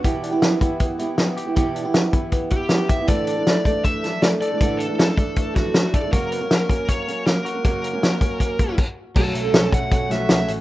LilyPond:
<<
  \new Staff \with { instrumentName = "Lead electric guitar" } { \time 4/4 \key fis \phrygian \tempo 4 = 158 r1 | r2 r8 g'4 e''8 | d''4. d''8 e''4 d''8 d''8~ | d''8 a'8 a'4. fis'4 d''8 |
ais'4. ais'8 cis''4 ais'4 | ais'2. r4 | a'4. fis''8 fis''8 e''4 r8 | }
  \new Staff \with { instrumentName = "Clean electric guitar" } { \time 4/4 \key fis \phrygian <e g'>8 d'16 e'16 b8 e'8 b8 e'8 b8 g'8 | <e g'>8 d'16 e'16 b8 e'8 b8 e'8 b8 g'8 | <e a'>8 d'8 a8 d'8 a8 d'8 a8 a'8 | <e a'>8 d'8 a8 d'8 a8 d'8 a8 a'8 |
<ais fis'>8 b16 cis'16 ais8 cis'8 ais8 cis'8 ais8 fis'8 | <ais fis'>8 cis'8 ais8 cis'8 ais8 b16 cis'16 r4 | fis8 a8 cis'8 a8 cis'8 fis'8 b16 cis'16 a8 | }
  \new Staff \with { instrumentName = "Steel-string acoustic guitar" } { \time 4/4 \key fis \phrygian <b, e b e' g'>8. <b e' g'>8. <e b e' g'>4 <e b e' g'>8 <e b e' g'>8. <b e' g'>16 | <b, e b e' g'>8. <b e' g'>8. <e b e' g'>4 <e b e' g'>8 <e b e' g'>8. <b e' g'>16 | <a, d e a d' a'>8. <e a d' a'>8. <e a d' a'>4 <e a d' a'>8 <e a d' a'>8. <e a d' a'>16 | <a, d e a d' a'>8. <e a d' a'>8. <e a d' a'>4 <e a d' a'>8 <e a d' a'>8. <e a d' a'>16 |
<fis, cis fis ais cis' ais'>8. <fis ais cis' ais'>8. <fis ais cis' ais'>4 <fis ais cis' ais'>8 <fis ais cis' ais'>8. <fis ais cis' ais'>16 | <fis, cis fis ais cis' ais'>8. <fis ais cis' ais'>8. <fis ais cis' ais'>4 <fis ais cis' ais'>8 r4 | <fis a cis' a'>8. <a cis' a'>4~ <a cis' a'>16 <fis a cis' a'>8 <fis a cis' a'>8. <a cis' a'>8. | }
  \new Staff \with { instrumentName = "Picked electric bass" } { \clef bass \time 4/4 \key fis \phrygian r1 | r1 | r1 | r1 |
r1 | r1 | b,,8 b,,8 b,,8 b,,8 b,,8 b,,8 b,,8 a,,8 | }
  \new DrumStaff \with { instrumentName = "Drums" } \drummode { \time 4/4 <hh bd>8 hh8 <hh sn>8 <hh bd>8 <hh bd>8 hh8 <hh sn>8 hh8 | <hh bd>8 hh8 <hh sn>8 <hh bd>8 <hh bd>8 <hh bd>8 <hh sn>8 <hh bd>8 | <hh bd>8 hh8 <hh sn>8 <hh bd>8 <hh bd>8 <hh sn>8 <hh sn>8 hh8 | <hh bd>8 hh8 <hh sn>8 <hh bd>8 <hh bd>8 <hh bd sn>8 <hh sn>8 <hh bd>8 |
<hh bd>8 hh8 <hh sn>8 <hh bd>8 <hh bd>8 hh8 <hh sn>8 hh8 | <hh bd>8 hh8 <hh sn>8 <hh bd>8 <hh bd>8 <hh bd>8 <cymc bd>4 | <cymc bd>8 hh8 <hh sn>8 <hh bd>8 <hh bd>8 <hh sn>8 <hh sn>8 hh8 | }
>>